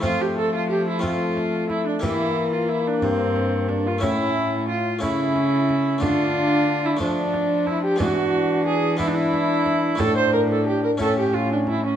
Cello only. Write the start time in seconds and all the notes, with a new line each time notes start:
0.04 F3
2.03 E3
3.02 G2
4.02 A2
5.02 C#3
6.02 D3
7.01 F3
8.00 E3
9.99 A2
11.00 A2